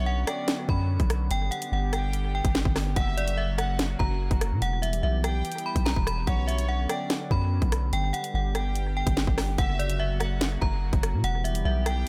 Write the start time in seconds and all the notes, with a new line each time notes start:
Already playing: B1 D3 F#3 B3 C#4 C#5
0.06 F#5
0.27 D5 G5, cross-stick, closed hi-hat
0.48 snare, closed hi-hat
0.69 F#2 B5, kick
1.00 B1, kick, closed hi-hat
1.10 cross-stick, closed hi-hat
1.31 G1 G3 B3 G4 G5, closed hi-hat
1.51 F#5, closed hi-hat
1.62 closed hi-hat
1.72 G1 F#5
1.93 G5, cross-stick, closed hi-hat
2.13 closed hi-hat
2.35 G5
2.45 G1, kick, closed hi-hat
2.55 snare
2.65 G1, kick
2.76 cross-stick, snare, open hi-hat
2.96 F#1 C#3 F#3 A#3 F#4 E5 F#5, kick, closed hi-hat
3.17 D5, closed hi-hat
3.28 closed hi-hat
3.38 E5
3.58 F#5, cross-stick, closed hi-hat
3.79 snare, closed hi-hat
3.99 F#1 A#5, kick
4.31 F#1, kick, closed hi-hat
4.41 cross-stick, closed hi-hat
4.52 A#2
4.62 E1 E3 G3 B3 G4 F#5, closed hi-hat
4.82 E5, closed hi-hat
4.93 closed hi-hat
5.03 B1 E5
5.24 G5, cross-stick, closed hi-hat
5.45 closed hi-hat
5.52 closed hi-hat
5.58 closed hi-hat
5.66 B5
5.76 B1, kick, closed hi-hat
5.85 A#5, snare
5.96 E1, kick
6.07 B5, cross-stick, closed hi-hat
6.27 B1 D3 F#3 C#4 C#5 F#5, kick, closed hi-hat
6.48 E5, closed hi-hat
6.58 closed hi-hat
6.69 F#5
6.89 D5 G5, cross-stick, closed hi-hat
7.10 snare, closed hi-hat
7.31 F#2 B5, kick
7.62 B1, kick, closed hi-hat
7.72 cross-stick, closed hi-hat
7.93 G1 G3 G4 G5, closed hi-hat
8.13 F#5, closed hi-hat
8.24 closed hi-hat
8.34 G1 F#5
8.55 G5, cross-stick, closed hi-hat
8.75 closed hi-hat
8.97 G5
9.07 G1, kick, closed hi-hat
9.17 snare
9.27 G1, kick
9.38 cross-stick, snare, open hi-hat
9.58 F#1 C#3 F#3 A#3 F#4 E5 F#5, kick, closed hi-hat
9.79 D5, closed hi-hat
9.90 closed hi-hat
10.00 E5
10.20 F#5, cross-stick, closed hi-hat
10.41 snare, closed hi-hat
10.61 F#1 A#5, kick
10.93 F#1, kick, closed hi-hat
11.03 cross-stick, closed hi-hat
11.13 A#2
11.24 E1 E3 G3 B3 G4 F#5, closed hi-hat
11.44 E5, closed hi-hat
11.55 closed hi-hat
11.65 B1 E5
11.86 G5, cross-stick, closed hi-hat